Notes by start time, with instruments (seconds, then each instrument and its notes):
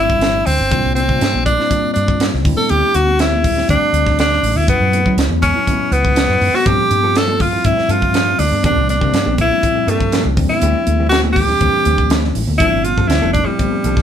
Already playing: fretless electric bass G1, tine electric piano F3 G3 A3 C4 D4, tenor saxophone E4
0.10 kick
0.21 snare, closed hi-hat
0.46 fretless electric bass D2, tenor saxophone C4, open hi-hat, low conga
0.59 fretless electric bass G1, tine electric piano D4 G4
0.70 fretless electric bass C2, tine electric piano G3 A#3 C4 D4 F4, kick, closed hi-hat
0.85 fretless electric bass C2
0.95 tenor saxophone C4, closed hi-hat, high conga
1.09 fretless electric bass C3, tine electric piano G3 A#3 C4 D4 F4, kick
1.21 fretless electric bass G2, snare, closed hi-hat
1.34 fretless electric bass A#1, high conga
1.45 tenor saxophone D4, kick, closed hi-hat, low conga
1.58 tine electric piano G3 A#3 C4 D4 E4, snare
1.69 tine electric piano G3 A#3 C4 D4 F4, kick, closed hi-hat
1.94 fretless electric bass G2, tenor saxophone D4, closed hi-hat
2.08 kick
2.20 snare, closed hi-hat
2.34 fretless electric bass C2, snare
2.43 fretless electric bass D2, tine electric piano G3 A3 C4 D4 E4, kick, open hi-hat, low conga
2.57 tenor saxophone A4, high conga
2.69 fretless electric bass D2, tenor saxophone G4, closed hi-hat
2.94 fretless electric bass D2, tenor saxophone F#4, closed hi-hat, high conga
3.06 tine electric piano G3 A3 C4 D4 G4
3.19 tenor saxophone E4, snare, closed hi-hat
3.33 high conga
3.44 kick, open hi-hat, low conga
3.55 tine electric piano G3 A3 C4 D4 G4, snare
3.68 fretless electric bass D2, tine electric piano G3 A3 C4 D4 G4, tenor saxophone D4, kick, closed hi-hat
3.81 muted fretless electric bass stroke
3.93 fretless electric bass D2, closed hi-hat
4.07 kick, snare
4.19 tenor saxophone D4, snare, closed hi-hat
4.33 snare
4.43 fretless electric bass A1, open hi-hat, low conga
4.55 fretless electric bass D2, tenor saxophone E4, high conga
4.66 fretless electric bass F#2, tine electric piano F#3 G#3 B3 C#4 E4, tenor saxophone B3, kick, closed hi-hat
4.80 fretless electric bass F#2
4.93 closed hi-hat, high conga
5.04 tine electric piano F#3 G#3 B3 C#4 E4, fretless electric bass F#3, kick
5.17 fretless electric bass C#2, snare, closed hi-hat
5.29 fretless electric bass E2, high conga
5.42 tenor saxophone C#4, kick, closed hi-hat, low conga
5.54 tine electric piano F#3 G#3 B3 C#4 E4
5.66 tine electric piano F#3 G#3 B3 C#4 E4, kick, closed hi-hat, high conga
5.91 fretless electric bass C#2, tenor saxophone B3, closed hi-hat
6.05 kick, low conga
6.16 snare, closed hi-hat
6.29 fretless electric bass F#2, snare, high conga
6.41 fretless electric bass F#2, open hi-hat, low conga
6.53 tenor saxophone F#4, muted fretless electric bass stroke, snare, high conga
6.64 fretless electric bass G2, tine electric piano F3 G3 A3 C4 D4, clean electric guitar F3 C4 D4 A4, tenor saxophone G4, kick, closed hi-hat
6.90 fretless electric bass G2, muted clean electric guitar stroke, closed hi-hat, high conga
7.02 tine electric piano F3 G3 A3 C4 F4, clean electric guitar C4 D4 A4
7.16 tenor saxophone A4, muted clean electric guitar stroke, snare, closed hi-hat
7.27 clean electric guitar F3 C4 D4 A4, high conga
7.40 tenor saxophone F4, muted clean electric guitar stroke, kick, open hi-hat, low conga
7.52 tine electric piano F3 G3 A3 C4 E4, muted clean electric guitar stroke
7.64 fretless electric bass G2, tine electric piano F3 G3 A3 C4 E5, tenor saxophone E4, kick, closed hi-hat
7.77 muted clean electric guitar stroke, snare
7.89 fretless electric bass G2, clean electric guitar F3 C4 D4 A4, tenor saxophone F4, closed hi-hat
8.02 muted clean electric guitar stroke, kick
8.14 clean electric guitar F3 C4 D4 A4, snare, closed hi-hat
8.38 fretless electric bass D2, tenor saxophone D4, muted clean electric guitar stroke, open hi-hat, low conga
8.51 fretless electric bass G2, tine electric piano C4 D4, muted clean electric guitar stroke, high conga
8.63 fretless electric bass C2, tine electric piano F3 G3 A#3 C4 D4, clean electric guitar F3 A#3 D4 G4, tenor saxophone D4, kick, closed hi-hat
8.76 fretless electric bass C2
8.88 tenor saxophone D4, muted clean electric guitar stroke, closed hi-hat, high conga
9.00 fretless electric bass C3, tine electric piano F3 G3 A#3 C4 D4, clean electric guitar A#3 D4 G4, kick
9.13 fretless electric bass G2, snare, closed hi-hat
9.26 fretless electric bass A#1, clean electric guitar F3 A#3 D4 G4, high conga
9.38 tenor saxophone E4, muted clean electric guitar stroke, kick, closed hi-hat, low conga
9.50 tine electric piano F3 G3 A#3 C4 D4, muted clean electric guitar stroke
9.63 tine electric piano A#2 F3 G3 C4 E4, kick, closed hi-hat
9.75 muted clean electric guitar stroke
9.87 fretless electric bass G2, clean electric guitar F3 A#3 D4 G4, tenor saxophone A3, closed hi-hat
10.00 muted clean electric guitar stroke, kick
10.12 clean electric guitar F3 A#3 D4 G4, snare, closed hi-hat
10.25 fretless electric bass C2
10.36 fretless electric bass D2, tine electric piano E3 G3 A3 C4 D4, muted clean electric guitar stroke, kick, open hi-hat, low conga
10.49 tenor saxophone E4, muted fretless electric bass stroke, muted clean electric guitar stroke, high conga
10.62 fretless electric bass D2, clean electric guitar E3 A3 C4 G4, closed hi-hat
10.87 fretless electric bass D2, muted clean electric guitar stroke, closed hi-hat, high conga
10.97 tine electric piano E3 G3 A3 C4 E4, clean electric guitar A3 C4 G4
11.09 tenor saxophone F#4, muted clean electric guitar stroke, snare, closed hi-hat
11.24 clean electric guitar E3 A3 C4 G4, high conga
11.33 tenor saxophone G4, muted clean electric guitar stroke, kick, open hi-hat, low conga
11.47 tine electric piano E3 G3 A3 C4 D4, muted clean electric guitar stroke
11.60 fretless electric bass D2, tine electric piano E3 G3 A3 C4 D4, kick, closed hi-hat
11.73 muted fretless electric bass stroke, muted clean electric guitar stroke
11.85 fretless electric bass D2, clean electric guitar E3 A3 C4 G4, closed hi-hat
11.98 kick
12.10 clean electric guitar E3 A3 C4 G4, snare, closed hi-hat
12.24 snare
12.35 fretless electric bass A1, muted clean electric guitar stroke, open hi-hat, low conga
12.47 fretless electric bass D2, tine electric piano C4 D4, muted clean electric guitar stroke, high conga
12.58 fretless electric bass G1, tine electric piano F3 G3 A3 C4 D4, clean electric guitar F3 C4 D4 A4, tenor saxophone E4, kick, closed hi-hat
12.72 fretless electric bass G1
12.84 tenor saxophone F4, muted clean electric guitar stroke, closed hi-hat, high conga
12.97 fretless electric bass G2, tine electric piano F3 G3 A3 C4 D4, clean electric guitar C4 D4 A4, kick
13.08 fretless electric bass D2, tenor saxophone E4, muted clean electric guitar stroke, snare, closed hi-hat
13.22 fretless electric bass F1, clean electric guitar F3 C4 D4 A4, high conga
13.33 tenor saxophone D4, muted clean electric guitar stroke, kick, closed hi-hat, low conga
13.45 tine electric piano F3 G3 A3 C4 E4, tenor saxophone G3, muted clean electric guitar stroke
13.58 tine electric piano F3 G3 A3 C4 D4, kick, closed hi-hat, high conga
13.72 muted clean electric guitar stroke
13.84 fretless electric bass B1, clean electric guitar F3 C4 D4 A4, closed hi-hat
13.97 muted clean electric guitar stroke, kick, snare, low conga